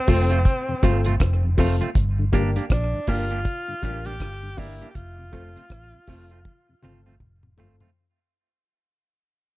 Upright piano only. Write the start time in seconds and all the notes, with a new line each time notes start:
0.07 A3 C4 F4 A4
0.31 F4 A4
0.82 A3 C4 F4 A4
1.57 A3 C4 F4 A4
2.32 A#3 D4 G4 A#4
3.08 A#3 D4 G4 A#4
3.31 G4 A#4
3.82 A#3 D4 G4 A#4
4.57 A#3 D4 G4 A#4
5.32 A3 C4 F4 A4
6.07 A3 C4 F4 A4
6.30 F4 A4
6.82 A3 C4 F4 A4
7.57 A3 C4 F4 A4